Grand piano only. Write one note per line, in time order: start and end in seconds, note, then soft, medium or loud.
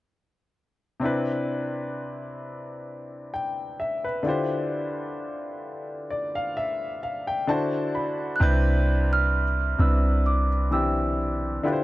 1.00 4.20 C3 medium
1.00 4.21 C4 medium
1.00 4.21 D4 medium
1.04 4.22 E4 medium
1.04 3.31 B4 medium
3.34 3.77 G5 medium
3.80 4.03 E5 medium
4.04 4.48 B4 medium
4.23 7.43 D3 medium
4.23 7.44 D4 medium
4.23 7.44 E4 medium
4.23 7.45 F4 medium
4.27 7.45 G4 medium
4.27 7.46 C5 medium
6.10 6.33 D5 medium
6.35 6.55 F5 medium
6.57 6.99 E5 medium
7.03 7.26 F5 medium
7.27 7.47 G5 medium
7.47 8.40 D3 medium
7.47 8.40 D4 medium
7.47 8.40 E4 medium
7.47 8.41 F#4 medium
7.47 8.42 C5 medium
7.47 7.92 A5 medium
7.95 8.38 B5 medium
8.40 9.41 C3 medium
8.40 9.42 C4 medium
8.40 9.42 D4 medium
8.40 9.43 E4 medium
8.40 9.43 B4 loud
9.78 10.48 C3 medium
9.78 10.48 C4 medium
9.78 10.48 D4 medium
9.78 10.49 E4 medium
9.78 10.49 B4 medium
10.71 11.63 E3 medium
10.71 11.64 C4 medium
10.71 11.62 D4 medium
10.71 11.63 E4 medium
10.71 11.64 G4 medium
11.63 11.84 D3 medium
11.63 11.84 D4 medium
11.63 11.84 E4 medium
11.63 11.84 F4 medium
11.63 11.84 G4 medium
11.63 11.72 B4 medium
11.73 11.84 C5 medium